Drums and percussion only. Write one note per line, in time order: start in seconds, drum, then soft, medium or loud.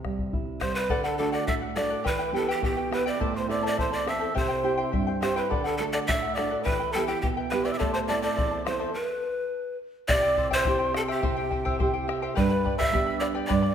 0.05 bombo rim soft
0.05 bombo low soft
0.19 bombo low medium
0.33 bombo low medium
0.61 bombo rim medium
0.61 bombo low medium
0.90 bombo low medium
1.48 bombo low medium
1.77 bombo rim medium
2.06 bombo low medium
2.63 bombo low medium
2.93 bombo rim medium
3.21 bombo low medium
3.79 bombo low medium
4.08 bombo rim medium
4.37 bombo low medium
4.93 bombo low medium
5.23 bombo rim medium
5.52 bombo low medium
6.09 bombo low medium
6.38 bombo rim medium
6.67 bombo low medium
7.23 bombo low medium
7.52 bombo rim soft
7.81 bombo low medium
8.38 bombo low medium
8.67 bombo rim medium
10.09 bombo low medium
10.37 bombo low medium
10.52 bombo low medium
10.65 bombo low medium
10.94 bombo rim medium
11.23 bombo low medium
11.51 bombo low soft
11.67 bombo low medium
11.80 bombo low medium
12.09 bombo rim medium
12.37 bombo low medium
12.66 bombo low medium
12.81 bombo low medium
12.95 bombo low medium
13.22 bombo rim soft
13.50 bombo low medium